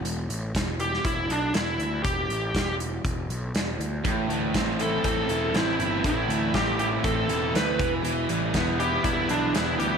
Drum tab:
HH |x-x-x-x-x-x-x-x-|x-x-x-x-x-x-x-x-|x-x-x-x-x-x-x-x-|x-x-x-x-x-x-x-x-|
SD |----o--o----o---|----o-------o---|----o-------o---|----o-------o---|
BD |----o---o-------|o---o---o-------|o---o---o-------|o---o---o-----o-|

HH |x-x-x-x-x-x-x-x-|
SD |----o-------o---|
BD |----o---o-------|